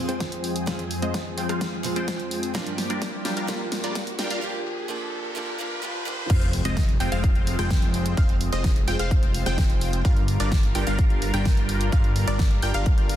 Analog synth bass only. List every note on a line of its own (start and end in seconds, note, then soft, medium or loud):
6.30 6.63 F1 loud
6.65 6.98 F1 loud
7.00 7.10 F1 loud
7.12 7.56 F1 loud
7.59 8.15 F1 loud
8.17 8.50 F1 loud
8.53 8.85 F1 loud
8.88 8.97 F1 loud
9.00 9.44 F1 loud
9.46 10.03 F1 loud
10.05 10.38 G1 loud
10.40 10.73 G1 loud
10.75 10.85 G1 loud
10.87 11.31 G1 medium
11.34 11.90 G1 loud
11.92 12.25 G1 loud
12.28 12.60 G1 loud
12.63 12.72 G1 loud
12.74 13.16 G1 medium